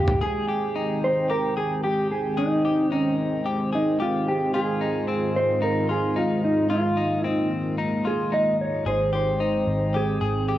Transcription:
Already playing: picked electric bass G1, analog synth pad C3 G#3 A#3 G4, clean electric guitar G4
0.08 floor tom
0.21 analog synth pad D#3 G#3 C4 G5, clean electric guitar G#4
0.48 clean electric guitar G4
0.76 clean electric guitar D#4
1.04 clean electric guitar C5
1.30 clean electric guitar G4 A#4
1.57 clean electric guitar G#4
1.83 clean electric guitar G4
2.11 clean electric guitar G#4
2.37 clean electric guitar D#4 G#4
2.65 clean electric guitar G4
2.92 clean electric guitar C#4 D#4
3.46 clean electric guitar G4
3.73 clean electric guitar D#4 G#4
4.00 clean electric guitar F4 G4
4.29 clean electric guitar G4
4.54 analog synth pad G#2 D#3 F4, clean electric guitar F4 G#4
4.81 clean electric guitar D#4
5.08 clean electric guitar C4
5.36 clean electric guitar C5
5.62 clean electric guitar D#4 A#4
5.89 clean electric guitar F4 G#4
6.16 clean electric guitar D#4 F4
6.45 clean electric guitar D#4
6.70 analog synth pad A#3, clean electric guitar F4
6.97 clean electric guitar D#4
7.24 clean electric guitar C4 D#4
7.78 clean electric guitar D#4
8.05 clean electric guitar F4 G#4
8.32 clean electric guitar D#4 D#5
8.61 clean electric guitar C#5
8.86 picked electric bass G#1, analog synth pad C4 G5, clean electric guitar G#4 C5
9.13 clean electric guitar G4 C5
9.40 clean electric guitar D#4
9.67 picked electric bass G#1
9.94 clean electric guitar G4 G#4
10.21 picked electric bass G#1, clean electric guitar G#4
10.48 clean electric guitar G4

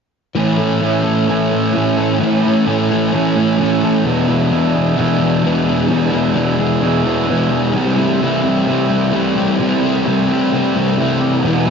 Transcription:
0.35 distorted electric guitar A2 E3, overdriven electric guitar A2 E3 A3 C#4 E4, clean electric guitar E3
0.39 distorted electric guitar A3
0.57 clean electric guitar A3, distorted electric guitar A3
0.62 distorted electric guitar E3
0.81 distorted electric guitar A2 E3 A3, overdriven electric guitar E3 A3 C#4 E4, clean electric guitar C#4
1.03 distorted electric guitar E3 A3, clean electric guitar A4
1.28 overdriven electric guitar A2 E3 A3 C#4 E4, distorted electric guitar A2 E3 A3, clean electric guitar C#4
1.50 clean electric guitar E3, distorted electric guitar A3
1.55 distorted electric guitar E3
1.73 distorted electric guitar A2 E3 A3, overdriven electric guitar E3 A3 C#4 E4, clean electric guitar A3
1.97 distorted electric guitar E3 A3, clean electric guitar A4
2.19 overdriven electric guitar A2 E3 A3 C#4 E4, distorted electric guitar A2 E3, clean electric guitar E3
2.23 distorted electric guitar A3
2.43 distorted electric guitar E3 A3, clean electric guitar A3
2.65 distorted electric guitar A2 E3, overdriven electric guitar E3 A3 C#4 E4, clean electric guitar C#4
2.70 distorted electric guitar A3
2.91 distorted electric guitar E3 A3, clean electric guitar A4
3.12 overdriven electric guitar A2 E3 A3 C#4 E4, distorted electric guitar A2 E3, clean electric guitar C#4
3.17 distorted electric guitar A3
3.36 clean electric guitar E3, distorted electric guitar A3
3.40 distorted electric guitar E3
3.57 distorted electric guitar A2, overdriven electric guitar E3 A3 C#4 E4, clean electric guitar A3
3.62 distorted electric guitar E3 A3
3.82 distorted electric guitar E3 A3, clean electric guitar A4
4.04 distorted electric guitar E2 B2 E3, overdriven electric guitar E2 B2 E3 G#3 D4 E4, clean electric guitar B3
4.28 distorted electric guitar E3, clean electric guitar B3
4.32 distorted electric guitar B2
4.51 distorted electric guitar E2 B2 E3, overdriven electric guitar E3 G#3 D4 E4, clean electric guitar D4
4.74 distorted electric guitar B2 E3, clean electric guitar G#4
4.97 distorted electric guitar E2 B2, overdriven electric guitar E2 B2 E3 G#3 D4 E4, clean electric guitar D4
5.01 distorted electric guitar E3
5.20 distorted electric guitar E3, clean electric guitar B3
5.24 distorted electric guitar B2
5.42 distorted electric guitar E2 B2 E3, overdriven electric guitar E3 G#3 D4 E4, clean electric guitar B3
5.66 distorted electric guitar B2 E3, clean electric guitar G#4
5.88 distorted electric guitar E2 B2 E3, overdriven electric guitar E2 B2 E3 G#3 D4, clean electric guitar B3
5.93 overdriven electric guitar E4
6.11 distorted electric guitar E3, clean electric guitar B3
6.15 distorted electric guitar B2
6.34 distorted electric guitar E2 B2 E3, overdriven electric guitar E3 G#3, clean electric guitar D4
6.38 overdriven electric guitar D4 E4
6.58 distorted electric guitar B2 E3, clean electric guitar G#4
6.80 distorted electric guitar E2 B2 E3, overdriven electric guitar E2 B2 E3 G#3 D4 E4, clean electric guitar D4
7.03 distorted electric guitar B2 E3, clean electric guitar B3
7.27 distorted electric guitar E2 B2, overdriven electric guitar E3 G#3 D4 E4, clean electric guitar B3
7.31 distorted electric guitar E3
7.50 distorted electric guitar B2 E3, clean electric guitar G#4
7.73 distorted electric guitar C3 G3 C4, overdriven electric guitar C3 E3 G3 C4 E4, clean electric guitar G3
7.97 distorted electric guitar G3 C4, clean electric guitar A3
8.20 distorted electric guitar C3 G3 C4, overdriven electric guitar E3 G3 C4 E4, clean electric guitar E4
8.43 distorted electric guitar C4, clean electric guitar G4
8.48 distorted electric guitar G3
8.66 overdriven electric guitar C3 E3 G3 C4 E4, distorted electric guitar C3 G3, clean electric guitar E4
8.70 distorted electric guitar C4
8.90 clean electric guitar G3, distorted electric guitar G3 C4
9.12 distorted electric guitar C3 G3 C4, overdriven electric guitar E3 G3 C4 E4, clean electric guitar A3
9.36 distorted electric guitar G3 C4, clean electric guitar G4
9.59 distorted electric guitar C3 G3 C4, overdriven electric guitar C3 E3 G3 C4 E4, clean electric guitar G3
9.83 clean electric guitar A3, distorted electric guitar C4
9.87 distorted electric guitar G3
10.05 distorted electric guitar C3 G3, overdriven electric guitar E3 G3 C4 E4, clean electric guitar E4
10.10 distorted electric guitar C4
10.29 distorted electric guitar C4, clean electric guitar G4
10.33 distorted electric guitar G3
10.51 distorted electric guitar C3 G3, overdriven electric guitar C3 E3 G3 C4 E4, clean electric guitar E4
10.56 distorted electric guitar C4
10.74 clean electric guitar G3, distorted electric guitar C4
10.80 distorted electric guitar G3
10.97 distorted electric guitar C3 G3, overdriven electric guitar E3 G3 C4 E4, clean electric guitar A3
11.01 distorted electric guitar C4
11.21 distorted electric guitar C4, clean electric guitar G4
11.25 distorted electric guitar G3
11.43 overdriven electric guitar E2 B2 E3 G#3 B3 E4, distorted electric guitar E2 B2 E3, clean electric guitar E3
11.67 distorted electric guitar E3

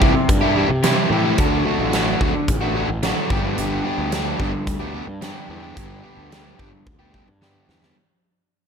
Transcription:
Already playing: overdriven electric guitar C3
0.00 picked electric bass C2, overdriven electric guitar E3 G3 E4 G4, kick
0.15 muted overdriven electric guitar stroke
0.29 picked electric bass G2, kick, closed hi-hat
0.41 overdriven electric guitar G3 E4 G4
0.56 overdriven electric guitar E3 G3 E4 G4
0.70 picked electric bass C3, muted overdriven electric guitar stroke
0.83 overdriven electric guitar C3 E3 G3 E4 G4, snare, closed hi-hat
1.10 picked electric bass A2, overdriven electric guitar E3 G3 E4 G4
1.24 overdriven electric guitar G3 E4 G4
1.38 picked electric bass D2, overdriven electric guitar D3 F#3 A3 D4 F#4, kick, closed hi-hat
1.65 overdriven electric guitar F#3 A3 D4 F#4
1.79 picked electric bass A1
1.92 overdriven electric guitar D3 F#3 A3 D4 F#4, snare, closed hi-hat
2.20 picked electric bass D2, overdriven electric guitar F#3 A3 D4 F#4, kick
2.35 muted overdriven electric guitar stroke
2.48 picked electric bass A1, kick, closed hi-hat
2.61 overdriven electric guitar A3 D4 F#4
2.75 overdriven electric guitar F#3 A3 D4 F#4
2.88 picked electric bass A1, muted overdriven electric guitar stroke
3.03 overdriven electric guitar D3 F#3 A3 D4 F#4, snare, closed hi-hat
3.30 picked electric bass G1, overdriven electric guitar G2 D3 G3 B3 D4 G4, kick
3.43 overdriven electric guitar G3 B3 D4 G4
3.57 picked electric bass G1, overdriven electric guitar G2 D3 G3 B3 D4 G4, closed hi-hat
3.83 overdriven electric guitar G3 B3 D4 G4
3.98 picked electric bass D2
4.11 overdriven electric guitar G2 D3 G3 B3 D4 G4, snare, closed hi-hat
4.39 picked electric bass G1, overdriven electric guitar G3 B3 D4 G4, kick
4.53 muted overdriven electric guitar stroke
4.67 picked electric bass D2, kick, closed hi-hat
4.80 overdriven electric guitar G3 B3 D4 G4
4.93 overdriven electric guitar G3 B3 D4 G4
5.07 picked electric bass G2, muted overdriven electric guitar stroke
5.21 overdriven electric guitar G2 D3 G3 B3 D4 G4, snare, closed hi-hat
5.48 picked electric bass E2, overdriven electric guitar G3 B3 D4 G4
5.63 overdriven electric guitar G3 B3 D4 G4
5.76 picked electric bass G1, overdriven electric guitar G2 D3 G3 B3 D4 G4, kick, closed hi-hat
6.02 overdriven electric guitar G3 B3 D4 G4
6.17 picked electric bass D2
6.30 overdriven electric guitar G2 D3 G3 B3 D4 G4, snare, closed hi-hat
6.58 picked electric bass G1, overdriven electric guitar G3 B3 D4 G4, kick
6.72 muted overdriven electric guitar stroke
6.87 picked electric bass D2, kick, high tom
6.99 overdriven electric guitar G3 B3 D4 G4
7.13 overdriven electric guitar G3 B3 D4 G4, kick
7.27 picked electric bass G2, muted overdriven electric guitar stroke, mid tom
7.42 overdriven electric guitar G2 D3 G3 B3 D4 G4, snare
7.68 picked electric bass E2, overdriven electric guitar G3 B3 D4 G4, snare
7.83 overdriven electric guitar G3 B3 D4 G4, snare

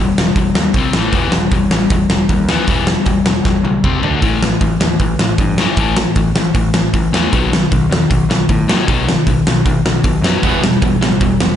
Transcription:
Already playing: picked electric bass E1
0.00 distorted electric guitar E3 G3
0.16 picked electric bass E1, distorted electric guitar E3 G3, snare
0.36 picked electric bass E1, distorted electric guitar E3 G3, kick, open hi-hat
0.55 picked electric bass D#2, distorted electric guitar E3 G3, snare
0.74 picked electric bass C2, distorted electric guitar C3 G3 C4, kick, open hi-hat
0.93 picked electric bass A1, distorted electric guitar A2 E3 A3, snare
1.12 picked electric bass E1, distorted electric guitar E3 G3 B3, kick, open hi-hat
1.32 picked electric bass E1, distorted electric guitar E3 G3, snare
1.51 picked electric bass E1, distorted electric guitar E3 G3, kick, open hi-hat
1.70 picked electric bass A1, distorted electric guitar E3 G3, snare
1.90 picked electric bass E1, distorted electric guitar E3 G3, kick, open hi-hat
2.10 picked electric bass E1, distorted electric guitar E3 G3, snare
2.29 picked electric bass D#2, distorted electric guitar E3 G3, kick, open hi-hat
2.49 distorted electric guitar E3 G3 B3, snare
2.67 picked electric bass E1, distorted electric guitar E3 G3 B3, kick, open hi-hat
2.87 distorted electric guitar E3 G3, snare
3.06 picked electric bass E1, distorted electric guitar E3 G3, kick, open hi-hat
3.24 picked electric bass E1, distorted electric guitar E3 G3, snare
3.45 picked electric bass E1, distorted electric guitar E3 G3, kick, snare
3.63 picked electric bass B1, distorted electric guitar E3 G3, high tom
3.84 picked electric bass C2, distorted electric guitar C3 G3 C4, kick, mid tom
4.02 picked electric bass D2, distorted electric guitar D3 A3 D4, floor tom
4.22 picked electric bass A1, distorted electric guitar A2 E3 A3, kick, open hi-hat
4.42 picked electric bass A1, distorted electric guitar A2 E3, snare
4.61 picked electric bass A1, distorted electric guitar A2 E3, kick, open hi-hat
4.80 picked electric bass D#2, distorted electric guitar A2 E3, snare
5.00 picked electric bass A1, distorted electric guitar A2 E3, kick, open hi-hat
5.19 picked electric bass A1, distorted electric guitar A2 E3, snare
5.38 picked electric bass G2, distorted electric guitar A2 E3, kick, open hi-hat
5.58 distorted electric guitar A2 E3 A3, snare
5.77 picked electric bass A1, distorted electric guitar A2 E3 A3, kick, open hi-hat
5.97 distorted electric guitar A2 E3, snare
6.16 picked electric bass A1, distorted electric guitar A2 E3, kick, open hi-hat
6.35 picked electric bass A1, distorted electric guitar A2 E3, snare
6.55 picked electric bass A1, distorted electric guitar A2 E3, kick, open hi-hat
6.74 picked electric bass A1, distorted electric guitar A2 E3, snare
6.93 picked electric bass A1, distorted electric guitar A2 E3, kick, open hi-hat
7.12 picked electric bass E2, distorted electric guitar A2 E3 A3, snare
7.31 picked electric bass B1, distorted electric guitar B2 D#3 F#3, kick, open hi-hat
7.51 picked electric bass B1, distorted electric guitar B2 D#3, snare
7.71 picked electric bass B1, distorted electric guitar B2 D#3, kick, open hi-hat
7.90 picked electric bass E2, distorted electric guitar B2 D#3, snare
8.10 picked electric bass B1, distorted electric guitar B2 D#3, kick, open hi-hat
8.29 picked electric bass B1, distorted electric guitar B2 D#3, snare
8.49 picked electric bass A2, distorted electric guitar B2 D#3, kick, open hi-hat
8.68 distorted electric guitar B2 D#3 F#3, snare
8.88 picked electric bass B1, distorted electric guitar B2 D#3 F#3, kick, open hi-hat
9.08 distorted electric guitar B2 D#3, snare
9.27 picked electric bass B1, distorted electric guitar B2 D#3, kick, open hi-hat
9.47 picked electric bass B1, distorted electric guitar B2 D#3, snare
9.65 picked electric bass B1, distorted electric guitar B2 D#3, kick, open hi-hat
9.85 picked electric bass B1, distorted electric guitar B2 D#3, snare
10.04 picked electric bass B1, distorted electric guitar B2 D#3, kick, open hi-hat
10.22 picked electric bass F#2, distorted electric guitar B2 D#3 F#3, snare
10.42 picked electric bass E1, distorted electric guitar E2 B2 E3 G3 B3, kick, open hi-hat
10.62 picked electric bass E1, distorted electric guitar E2 B2 E3 G3, snare
10.82 picked electric bass E1, distorted electric guitar E2 B2 E3 G3, kick, open hi-hat
11.01 picked electric bass A1, distorted electric guitar E2 B2 E3 G3, snare
11.20 picked electric bass E1, distorted electric guitar E2 B2 E3 G3, kick, open hi-hat
11.40 picked electric bass E1, distorted electric guitar E2 B2 E3 G3, snare

